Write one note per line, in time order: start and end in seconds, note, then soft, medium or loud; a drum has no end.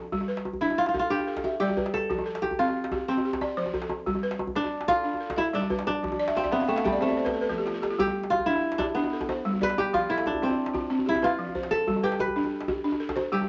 0.00 0.31 D4 medium
0.00 0.67 F4 medium
0.00 0.28 A4 medium
0.12 0.45 G3 medium
0.12 djembe bass medium
0.21 djembe tone medium
0.28 0.77 B4 medium
0.37 djembe slap soft
0.45 djembe tone medium
0.53 djembe bass medium
0.61 0.94 D4 medium
0.61 0.84 E4 medium
0.70 djembe tone soft
0.78 0.88 F4 medium
0.86 0.99 F4 medium
0.86 djembe slap medium
0.94 1.26 A4 medium
0.94 djembe tone medium
0.94 djembe bass medium
0.99 2.51 F4 medium
1.10 1.43 D4 medium
1.10 1.59 G4 medium
1.19 djembe tone medium
1.27 1.77 A4 medium
1.37 djembe slap medium
1.37 djembe bass medium
1.44 1.93 E5 medium
1.44 djembe tone medium
1.60 1.93 G3 medium
1.60 2.42 G4 medium
1.60 2.10 D5 medium
1.69 djembe tone medium
1.77 2.26 B4 medium
1.77 djembe bass medium
1.86 djembe slap medium
1.94 3.25 A4 medium
1.94 djembe tone medium
2.10 2.42 F3 medium
2.10 djembe bass medium
2.19 djembe tone medium
2.26 2.75 A4 medium
2.35 djembe slap medium
2.42 3.83 G4 medium
2.42 djembe tone medium
2.51 djembe bass medium
2.59 2.92 C4 medium
2.59 4.10 F4 medium
2.68 djembe tone medium
2.84 djembe slap medium
2.92 3.24 G4 medium
2.92 djembe tone medium
2.92 djembe bass medium
3.08 4.88 C4 medium
3.08 3.41 C4 medium
3.18 djembe tone medium
3.25 3.74 G4 medium
3.33 djembe slap medium
3.33 djembe bass medium
3.41 3.90 D5 medium
3.41 djembe tone medium
3.57 3.90 F3 medium
3.57 4.06 C5 medium
3.66 djembe tone medium
3.74 4.23 A4 medium
3.74 djembe bass medium
3.82 djembe slap medium
3.90 djembe tone medium
4.06 4.39 G3 medium
4.06 djembe bass medium
4.15 djembe tone medium
4.23 4.72 B4 medium
4.31 djembe slap medium
4.39 djembe tone medium
4.47 djembe bass medium
4.56 4.88 D4 medium
4.56 5.54 D4 medium
4.64 djembe tone medium
4.81 djembe slap medium
4.88 5.44 F4 loud
4.88 5.19 A4 medium
4.88 djembe bass medium
5.04 5.37 D4 medium
5.14 djembe tone medium
5.21 5.70 A4 medium
5.30 djembe slap medium
5.30 djembe bass medium
5.36 5.44 E4 medium
5.36 5.86 E5 medium
5.36 djembe tone medium
5.53 5.86 G3 medium
5.53 5.86 D4 medium
5.53 6.03 D5 medium
5.62 djembe tone medium
5.70 6.19 B4 medium
5.70 djembe bass medium
5.79 djembe slap medium
5.87 7.55 D4 medium
5.87 djembe tone medium
6.03 6.36 F3 medium
6.03 djembe slap soft
6.03 djembe bass medium
6.12 djembe tone medium
6.19 6.35 D5 medium
6.27 6.43 E5 medium
6.27 djembe slap medium
6.35 6.58 C4 medium
6.35 6.51 F5 medium
6.35 djembe tone medium
6.44 6.59 D5 medium
6.44 djembe bass medium
6.51 8.39 B3 medium
6.51 6.84 C4 medium
6.51 6.67 E5 medium
6.60 6.75 F5 medium
6.60 djembe slap soft
6.60 djembe tone medium
6.68 7.02 A3 medium
6.68 6.83 G5 medium
6.76 6.91 F5 medium
6.76 djembe slap medium
6.84 8.04 G3 medium
6.84 7.00 E5 medium
6.84 djembe slap soft
6.84 djembe tone medium
6.84 djembe bass medium
6.92 7.07 D5 medium
7.01 9.02 A3 medium
7.01 7.33 C4 medium
7.01 7.16 C5 medium
7.09 7.24 D5 medium
7.09 djembe tone soft
7.17 7.32 C5 medium
7.25 7.40 B4 medium
7.25 djembe slap medium
7.25 djembe bass medium
7.33 7.48 A4 medium
7.41 7.57 B4 medium
7.49 7.82 F3 medium
7.49 7.65 A4 medium
7.49 djembe bass soft
7.58 7.73 G4 medium
7.66 7.81 F4 medium
7.66 djembe slap soft
7.74 7.89 A4 medium
7.82 7.97 G4 medium
7.82 djembe slap medium
7.90 8.06 F4 medium
7.99 8.31 G3 medium
7.99 9.41 G4 medium
7.99 djembe bass medium
8.07 djembe tone medium
8.23 djembe slap soft
8.30 8.52 F4 medium
8.30 djembe tone medium
8.39 djembe bass medium
8.46 8.80 D4 medium
8.46 10.00 E4 medium
8.55 djembe tone soft
8.72 djembe slap medium
8.78 8.84 D4 medium
8.78 9.29 G4 medium
8.78 djembe tone medium
8.78 djembe bass medium
8.95 10.49 B3 medium
8.95 9.29 D4 medium
9.04 djembe tone medium
9.13 9.61 A4 medium
9.21 djembe slap medium
9.21 djembe bass medium
9.29 9.77 C5 medium
9.29 djembe tone medium
9.45 9.77 G3 medium
9.53 djembe tone medium
9.61 10.49 B4 loud
9.61 10.10 D5 medium
9.61 djembe bass medium
9.70 djembe slap medium
9.78 11.19 G4 medium
9.78 djembe tone medium
9.93 10.26 F3 medium
9.93 10.16 F4 medium
9.93 djembe bass medium
10.10 11.08 E4 medium
10.10 10.58 A4 medium
10.18 djembe slap medium
10.26 11.95 D4 medium
10.26 djembe tone medium
10.34 djembe bass soft
10.42 10.74 C4 medium
10.42 12.26 C4 medium
10.50 djembe tone medium
10.66 djembe slap soft
10.74 11.22 F4 medium
10.74 djembe tone medium
10.74 djembe bass medium
10.90 11.23 C4 medium
10.99 djembe tone medium
11.06 11.30 E4 medium
11.06 11.55 G4 medium
11.15 djembe slap soft
11.15 djembe bass soft
11.22 12.75 F4 medium
11.22 11.71 B4 medium
11.22 djembe tone medium
11.39 11.71 F3 medium
11.48 djembe tone soft
11.55 12.03 C5 medium
11.55 djembe bass medium
11.63 djembe slap soft
11.71 13.03 A4 medium
11.71 djembe tone medium
11.87 12.20 G3 medium
11.87 djembe bass medium
11.96 djembe tone medium
12.03 13.32 G4 medium
12.03 12.52 B4 medium
12.12 djembe slap soft
12.19 13.43 B4 medium
12.19 djembe tone medium
12.28 djembe bass medium
12.36 12.68 D4 medium
12.44 djembe tone soft
12.61 djembe slap medium
12.68 13.17 G4 medium
12.68 djembe tone medium
12.68 djembe bass medium
12.84 13.17 D4 medium
12.92 djembe tone medium
13.00 13.49 A4 medium
13.09 djembe slap medium
13.09 djembe bass medium
13.16 13.49 C5 medium
13.16 djembe tone medium
13.32 13.49 G3 medium
13.32 13.49 G4 medium
13.41 djembe tone medium